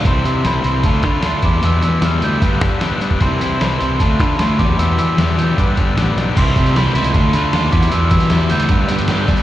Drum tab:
CC |----------------|----------------|----------------|----------------|
HH |x-x-x-x-x-x-x-x-|x-x-x-x-x-x-x-x-|x-x-x-x-x-x-x-x-|x-x-x-x-x-x-x-x-|
SD |----o----o--o---|----o-------o---|----o-------o---|----o-------o-o-|
BD |o-------o-o---o-|--------o-o----o|o-------o-o---o-|--------o-o-----|

CC |x---------------|----------------|
HH |x-xxx-xxx-x-x-xx|x-xxx-xxx-xxx-xx|
SD |----o-------o---|---oo-------o---|
BD |o-o-----o-----o-|--o-----o-----o-|